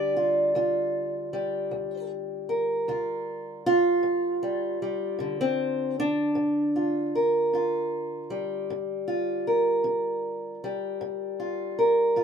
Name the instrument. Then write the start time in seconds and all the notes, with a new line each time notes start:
steel-string acoustic guitar
Already playing: D3 G3 G4 D5
0.16 F4
0.55 D2 F4
1.33 G3
1.71 D2
2.49 A#4
2.88 D2 F4
3.66 F4
4.03 G2
4.43 G3
4.82 G3
5.19 G2 D3
5.41 C4
6.00 D4
6.35 G2
6.76 F4
7.15 A#4
7.54 G2 F4
8.30 G3
8.70 G2
9.08 F4
9.47 A#4
9.84 G2
10.64 G3
11.01 G2
11.40 F4
11.79 A#4
12.16 G2 F4